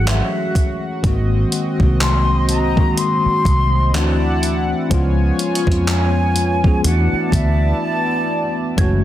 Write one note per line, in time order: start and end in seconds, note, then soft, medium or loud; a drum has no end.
0.00 0.20 G#1 medium
0.00 1.05 E3 medium
0.00 1.00 F#3 medium
0.00 1.05 A3 medium
0.00 1.06 C#4 medium
0.00 3.90 F#4 medium
0.00 1.06 G#4 medium
0.00 0.12 A4 medium
0.00 1.00 F#5 medium
0.07 0.84 E5 medium
0.07 clap medium
0.07 closed hi-hat medium
0.55 kick medium
0.55 closed hi-hat medium
1.03 1.43 G#1 loud
1.03 1.49 D#3 medium
1.03 1.50 G#3 medium
1.03 1.50 A#3 medium
1.03 4.87 C4 medium
1.03 1.51 C4 medium
1.03 1.51 F#4 medium
1.03 3.91 D#5 medium
1.03 kick loud
1.03 closed hi-hat medium
1.52 closed hi-hat medium
1.79 2.93 C2 medium
1.79 2.38 D#3 medium
1.79 2.39 G#3 medium
1.79 2.39 A#3 medium
1.79 2.40 C4 medium
1.79 2.40 F#4 medium
1.79 kick medium
2.01 2.46 C6 loud
2.01 clap loud
2.01 closed hi-hat medium
2.49 3.00 A#5 loud
2.49 closed hi-hat medium
2.76 3.93 D#3 medium
2.76 3.94 G#3 medium
2.76 3.94 A#3 medium
2.76 3.94 C4 medium
2.76 3.95 F#4 medium
2.76 kick medium
2.98 3.97 C6 loud
2.98 closed hi-hat medium
3.26 muted fingered electric bass stroke soft
3.45 3.94 C2 medium
3.45 kick medium
3.45 closed hi-hat medium
3.93 4.72 D2 medium
3.93 4.74 E3 medium
3.93 4.75 A3 medium
3.93 4.75 C4 medium
3.93 4.76 D4 medium
3.93 4.90 E4 medium
3.93 4.76 F#4 medium
3.93 4.90 D5 medium
3.93 4.90 F#5 medium
3.93 4.71 A5 medium
3.93 clap loud
3.93 closed hi-hat medium
4.43 closed hi-hat medium
4.90 5.30 C#2 loud
4.90 5.36 F3 medium
4.90 5.37 G#3 medium
4.90 6.82 B3 medium
4.90 5.37 B3 medium
4.90 5.38 C#4 medium
4.90 6.82 F4 medium
4.90 5.38 F4 medium
4.90 6.82 C#5 medium
4.90 6.82 G#5 medium
4.90 kick loud
4.90 closed hi-hat medium
5.39 closed hi-hat medium
5.55 closed hi-hat medium
5.67 6.80 F2 medium
5.67 6.25 F3 medium
5.67 6.26 G#3 medium
5.67 6.26 B3 medium
5.67 6.27 C#4 medium
5.67 6.27 F4 medium
5.67 kick medium
5.72 closed hi-hat medium
5.88 6.81 G#5 medium
5.88 clap loud
5.88 closed hi-hat medium
6.36 closed hi-hat medium
6.63 6.84 F3 medium
6.63 6.84 G#3 medium
6.63 6.84 B3 medium
6.63 6.85 C#4 medium
6.63 6.86 G#4 medium
6.63 kick medium
6.84 7.07 E2 loud
6.84 8.40 E3 medium
6.84 8.41 A3 medium
6.84 8.76 B3 medium
6.84 8.41 B3 medium
6.84 8.42 D4 medium
6.84 8.76 E4 medium
6.84 8.42 F#4 medium
6.84 8.76 D5 medium
6.84 7.30 F#5 medium
6.84 8.76 A5 medium
6.84 closed hi-hat medium
7.13 muted fingered electric bass stroke soft
7.32 7.71 D2 medium
7.32 7.78 E5 medium
7.32 kick medium
7.32 closed hi-hat medium
7.82 8.54 A5 loud
8.77 9.04 F#1 loud
8.77 9.04 E3 medium
8.77 9.04 F#3 medium
8.77 9.04 G#3 medium
8.77 9.04 A3 medium
8.77 9.04 C#4 medium
8.77 9.04 E4 medium
8.77 9.04 F#4 medium
8.77 9.04 F#4 loud
8.77 9.04 C#5 medium
8.77 9.04 G#6 soft
8.77 kick loud
8.77 closed hi-hat medium